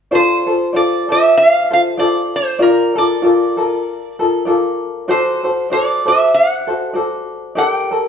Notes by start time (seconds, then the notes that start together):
0.11 F4 A4 C5 D5
0.47 F4 A4 C5
0.73 F4 A4 C5 D5
1.09 F4 A4 C5 E5
1.37 F5
1.70 F4 A4 C5 F5
1.97 F4 A4 C5 D5
2.36 C5
2.59 F4 A#4 D5
2.96 F4 A4 A#4 D5
3.22 F4 A4 A#4 D5
3.57 F4 A4 A#4
4.19 F4 A4 A#4
4.45 F4 A4 A#4 D5
5.08 F#4 A4 C5 D5
5.44 F#4 A4 C5
5.70 F#4 A4 C5 D5
6.05 F#4 A4 C5 E5
6.34 F#5
6.67 F#4 A4 C5
6.93 F#4 A4 C5 D5
7.55 G4 A4 A#4 D5 G5
7.91 G4 A4 A#4